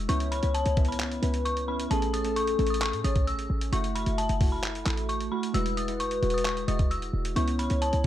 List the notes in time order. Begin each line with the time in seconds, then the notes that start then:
Already playing: G#3 E4 F#4
0.08 C#2 B3 C#4 E4 C#5 C#6, closed hi-hat
0.20 closed hi-hat
0.32 B5, closed hi-hat
0.42 C#2 B3 C#4 E4, closed hi-hat
0.54 A5, closed hi-hat
0.66 C#2, closed hi-hat
0.77 B3 C#4 E4, kick, closed hi-hat, open hi-hat
0.85 B5, closed hi-hat
0.92 closed hi-hat
1.00 clap, closed hi-hat
1.11 closed hi-hat
1.22 C#2 B3 C#4 E4 B4, closed hi-hat
1.34 closed hi-hat
1.45 C#6, closed hi-hat
1.57 closed hi-hat
1.68 B3 C#4 E4 B5
1.80 closed hi-hat
1.90 A1 A3 C#4 G#4 A4 A5, closed hi-hat
2.02 closed hi-hat
2.14 D#6, closed hi-hat
2.24 A3 C#4 A4, closed hi-hat
2.36 C#6, closed hi-hat
2.47 closed hi-hat
2.58 A1 A3 C#4 A4, closed hi-hat
2.67 D#6, closed hi-hat
2.74 closed hi-hat
2.81 C#6, clap, closed hi-hat
2.93 A2, closed hi-hat
3.04 A1 A3 C#4 G#4 C#5 D#6, closed hi-hat
3.16 kick, closed hi-hat
3.27 E6, closed hi-hat
3.39 closed hi-hat
3.50 A1
3.61 closed hi-hat
3.72 F#1 A3 E4 F#4 E5 C#6, closed hi-hat
3.84 closed hi-hat
3.95 B5, closed hi-hat
4.06 F#1 A3 E4 F#4, closed hi-hat
4.18 A5, closed hi-hat
4.29 F#1, closed hi-hat
4.40 A3 E4 F#4, kick, open hi-hat
4.52 B5
4.63 clap, closed hi-hat
4.75 closed hi-hat
4.85 A1 A3 E4 A4, clap, closed hi-hat
4.97 closed hi-hat
5.09 C#6, closed hi-hat
5.20 closed hi-hat
5.31 A3 E4 F#4 B5
5.43 closed hi-hat
5.54 E1 G#3 E4 F#4 B4 E6, closed hi-hat
5.66 closed hi-hat
5.77 D#6, closed hi-hat
5.88 G#3 E4 F#4, closed hi-hat
6.00 F#1 C#6, closed hi-hat
6.11 closed hi-hat
6.22 E1 G#3 E4 F#4, closed hi-hat
6.30 D#6, closed hi-hat
6.38 closed hi-hat
6.45 C#6, clap, closed hi-hat
6.57 closed hi-hat
6.67 E1 G#3 E4 F#4 D#5 D#6, closed hi-hat
6.79 kick, closed hi-hat
6.91 E6, closed hi-hat
7.02 closed hi-hat
7.13 E1
7.25 closed hi-hat
7.36 C#2 B3 C#4 E4 C#5 C#6, closed hi-hat
7.48 closed hi-hat
7.59 B5, closed hi-hat
7.70 C#2 B3 C#4 E4, closed hi-hat
7.82 A5, closed hi-hat
7.93 C#2, closed hi-hat